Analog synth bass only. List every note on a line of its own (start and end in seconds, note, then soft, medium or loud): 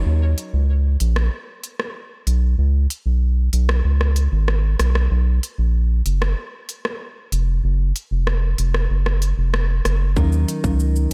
0.06 0.35 D#2 loud
0.53 0.97 C#2 medium
1.01 1.29 A#1 loud
2.27 2.55 B1 loud
2.58 2.87 C#2 loud
3.06 3.49 B1 medium
3.53 3.82 B1 loud
3.85 4.28 C#2 medium
4.32 4.76 G#1 loud
4.80 5.08 B1 loud
5.11 5.40 B1 loud
5.58 6.02 A#1 medium
6.06 6.34 F#1 medium
7.32 7.61 F1 medium
7.64 7.92 F#1 loud
8.11 8.55 F1 medium
8.59 8.87 F1 medium
8.90 9.34 F#1 medium
9.38 9.81 F1 medium
9.85 10.18 F#1 loud
10.17 10.45 D#2 loud
10.64 11.07 C#2 medium